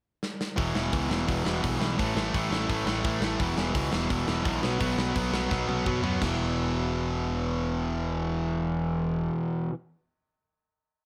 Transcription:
0.23 snare medium
0.41 snare medium
0.56 0.72 E1 loud
0.56 0.73 E2 medium
0.56 0.74 B2 loud
0.56 0.75 E3 loud
0.56 kick loud
0.56 open hi-hat medium
0.74 0.89 E1 medium
0.74 0.90 E2 medium
0.74 0.91 B2 medium
0.74 0.93 E3 medium
0.74 snare loud
0.92 1.07 C#2 medium
0.92 1.08 E2 medium
0.92 1.09 B2 medium
0.92 1.10 E3 medium
0.92 kick loud
0.92 open hi-hat medium
1.09 1.24 E1 medium
1.09 1.26 E2 medium
1.09 1.26 B2 loud
1.09 1.27 E3 medium
1.09 snare loud
1.27 1.43 E1 medium
1.27 1.44 E2 medium
1.27 1.44 B2 medium
1.27 1.46 E3 medium
1.27 kick loud
1.27 open hi-hat medium
1.45 1.60 E1 medium
1.45 1.61 E2 medium
1.45 1.61 B2 medium
1.45 1.62 E3 loud
1.45 snare loud
1.62 1.78 B1 loud
1.62 1.78 E2 medium
1.62 1.79 B2 loud
1.62 1.80 E3 loud
1.62 kick loud
1.62 open hi-hat medium
1.79 1.95 B1 medium
1.79 1.96 E2 medium
1.79 1.97 B2 medium
1.79 1.98 E3 medium
1.79 snare loud
1.97 2.13 A1 medium
1.97 2.14 A2 medium
1.97 2.15 E3 medium
1.97 2.15 A3 loud
1.97 kick loud
1.97 open hi-hat medium
2.15 2.30 A1 medium
2.15 2.32 A2 medium
2.15 2.33 E3 medium
2.15 2.33 A3 medium
2.15 snare loud
2.33 2.48 A1 medium
2.33 2.49 A2 medium
2.33 2.50 E3 loud
2.33 2.50 A3 medium
2.33 kick loud
2.33 open hi-hat medium
2.50 2.65 A1 medium
2.50 2.67 A2 loud
2.50 2.68 E3 medium
2.50 2.68 A3 loud
2.50 snare loud
2.68 2.83 A1 medium
2.68 2.85 A2 medium
2.68 2.85 E3 loud
2.68 2.86 A3 loud
2.68 kick loud
2.68 open hi-hat medium
2.86 3.00 A1 loud
2.86 3.03 A2 medium
2.86 3.04 E3 medium
2.86 3.04 A3 loud
2.86 snare loud
3.04 3.21 A2 medium
3.04 3.18 A2 loud
3.04 3.22 E3 loud
3.04 3.23 A3 loud
3.04 kick loud
3.04 open hi-hat medium
3.21 3.35 A1 medium
3.21 3.38 A2 medium
3.21 3.39 E3 medium
3.21 3.39 A3 loud
3.21 snare loud
3.40 3.54 E1 medium
3.40 3.56 E2 loud
3.40 3.57 B2 loud
3.40 3.57 E3 loud
3.40 kick loud
3.40 open hi-hat medium
3.57 3.71 E1 medium
3.57 3.74 E2 medium
3.57 3.75 B2 medium
3.57 3.75 E3 medium
3.57 snare loud
3.75 3.89 C#2 medium
3.75 3.91 E2 medium
3.75 3.92 B2 medium
3.75 3.93 E3 medium
3.75 kick loud
3.75 open hi-hat medium
3.92 4.07 E1 medium
3.92 4.09 E2 medium
3.92 4.09 B2 loud
3.92 4.10 E3 loud
3.92 snare loud
4.10 4.24 E1 medium
4.10 4.27 E2 medium
4.10 4.27 B2 medium
4.10 4.28 E3 medium
4.10 kick medium
4.10 open hi-hat medium
4.28 4.42 E1 medium
4.28 4.44 E2 medium
4.28 4.45 B2 medium
4.28 4.46 E3 medium
4.28 snare loud
4.45 4.60 B1 loud
4.45 4.61 E2 medium
4.45 4.61 B2 medium
4.45 4.62 E3 loud
4.45 kick loud
4.45 open hi-hat medium
4.62 4.77 B1 medium
4.62 4.78 B2 medium
4.62 4.80 F#3 medium
4.62 4.80 B3 loud
4.62 snare loud
4.80 4.95 B1 medium
4.80 4.96 B2 medium
4.80 4.97 F#3 loud
4.80 4.98 B3 loud
4.80 kick loud
4.80 open hi-hat medium
4.97 5.12 B1 medium
4.97 5.14 B2 medium
4.97 5.15 F#3 medium
4.97 5.15 B3 medium
4.97 snare loud
5.15 5.30 B1 medium
5.15 5.31 B2 loud
5.15 5.32 F#3 loud
5.15 5.33 B3 medium
5.15 kick loud
5.15 open hi-hat medium
5.32 5.47 B1 medium
5.32 5.49 B2 medium
5.32 5.50 F#3 medium
5.32 5.50 B3 loud
5.32 snare loud
5.50 5.66 B1 loud
5.50 5.67 B2 medium
5.50 5.67 F#3 medium
5.50 5.68 B3 loud
5.50 kick loud
5.50 snare medium
5.67 5.82 B1 medium
5.67 5.84 B2 medium
5.67 5.85 F#3 medium
5.67 5.86 B3 loud
5.67 high tom medium
5.86 6.02 B2 medium
5.86 6.01 B2 loud
5.86 6.03 F#3 medium
5.86 6.03 B3 medium
5.86 kick loud
5.86 mid tom medium
6.02 6.17 F#2 medium
6.02 6.20 B2 medium
6.02 6.21 F#3 loud
6.02 6.21 B3 loud
6.02 floor tom medium
6.20 9.28 E1 medium
6.20 9.70 E2 medium
6.20 9.73 B2 loud
6.20 kick loud
6.20 snare loud
6.20 crash medium
6.24 9.74 E3 loud

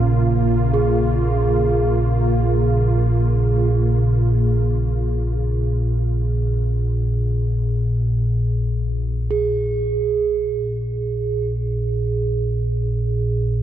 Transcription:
0.00 9.30 A#1 medium
0.00 9.30 A#2 medium
0.00 9.31 C#3 medium
0.00 9.31 A#3 medium
0.00 9.31 F4 medium
0.74 9.29 G#4 medium
9.31 13.63 A#1 medium
9.31 13.63 A#2 medium
9.31 13.63 G#4 medium

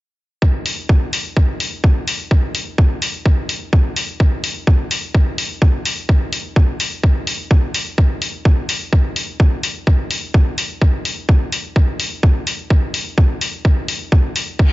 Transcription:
0.42 kick loud
0.66 open hi-hat loud
0.89 kick loud
1.13 open hi-hat medium
1.37 kick loud
1.60 open hi-hat medium
1.84 kick loud
2.08 open hi-hat medium
2.31 kick loud
2.55 open hi-hat loud
2.78 kick loud
3.02 open hi-hat medium
3.26 kick loud
3.49 open hi-hat loud
3.73 kick loud
3.96 open hi-hat medium
4.20 kick loud
4.44 open hi-hat loud
4.67 kick loud
4.91 open hi-hat medium
5.14 kick loud
5.38 open hi-hat loud
5.62 kick loud
5.85 open hi-hat medium
6.09 kick loud
6.33 open hi-hat loud
6.56 kick loud
6.80 open hi-hat medium
7.03 kick loud
7.27 open hi-hat loud
7.51 kick loud
7.74 open hi-hat medium
7.98 kick loud
8.22 open hi-hat medium
8.45 kick loud
8.69 open hi-hat medium
8.93 kick loud
9.16 open hi-hat medium
9.40 kick loud
9.63 open hi-hat medium
9.87 kick loud
10.11 open hi-hat medium
10.34 kick medium
10.58 open hi-hat medium
10.81 kick loud
11.05 open hi-hat medium
11.29 kick medium
11.52 open hi-hat medium
11.76 kick loud
12.00 open hi-hat medium
12.23 kick medium
12.47 open hi-hat medium
12.70 kick loud
12.94 open hi-hat medium
13.18 kick medium
13.41 open hi-hat medium
13.65 kick loud
13.88 open hi-hat medium
14.12 kick loud
14.36 open hi-hat medium
14.59 kick loud
14.59 reverse cymbal medium

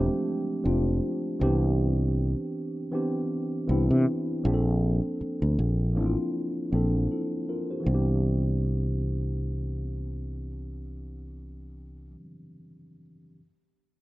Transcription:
0.00 0.63 F3 loud
0.00 1.41 G#3 medium
0.00 0.64 A3 loud
0.00 0.65 C4 loud
0.00 0.66 D4 loud
0.00 1.42 G4 loud
0.63 0.99 F1 medium
0.63 1.31 F3 medium
0.63 1.32 A3 medium
0.63 1.32 C4 medium
0.63 1.32 D4 medium
0.63 1.33 F4 medium
1.39 2.34 C2 medium
1.39 1.47 D#3 medium
1.39 2.75 B3 medium
1.39 2.76 C4 medium
1.39 2.76 D4 medium
1.39 2.77 G4 medium
1.46 2.78 E3 medium
2.91 3.59 E3 medium
2.91 3.60 B3 medium
2.91 3.60 C4 medium
2.91 3.60 D4 medium
2.91 3.61 G4 medium
3.67 3.88 C2 medium
3.67 4.35 E3 medium
3.67 4.36 B3 medium
3.67 4.36 C4 medium
3.67 4.37 D4 medium
3.67 4.37 E4 medium
3.91 4.05 C3 medium
4.44 4.99 A#1 medium
4.44 5.79 F3 medium
4.44 5.79 A#3 medium
4.44 5.80 C4 medium
4.44 5.80 D4 medium
4.44 4.53 G#4 medium
4.54 5.84 A4 medium
5.21 muted fretless electric bass stroke soft
5.42 5.57 D2 medium
5.59 5.97 A#1 medium
5.95 6.15 A1 medium
5.95 6.63 F3 medium
5.95 6.63 A#3 medium
5.95 6.64 C4 medium
5.95 6.64 D4 medium
5.95 6.04 E4 medium
6.06 6.68 F4 medium
6.72 7.07 A#1 medium
6.72 7.39 F3 medium
6.72 7.40 A#3 medium
6.72 7.40 C4 medium
6.72 7.41 D4 medium
6.72 7.10 A4 medium
7.11 7.47 E4 soft
7.11 7.46 A4 soft
7.49 7.69 F4 medium
7.49 7.68 A#4 medium
7.70 7.93 G4 soft
7.70 8.06 C5 soft
7.80 12.09 E3 medium
7.80 12.12 B3 medium
7.86 12.15 C2 medium
7.86 12.16 C4 medium
7.91 12.20 D4 medium
7.91 12.23 G4 medium

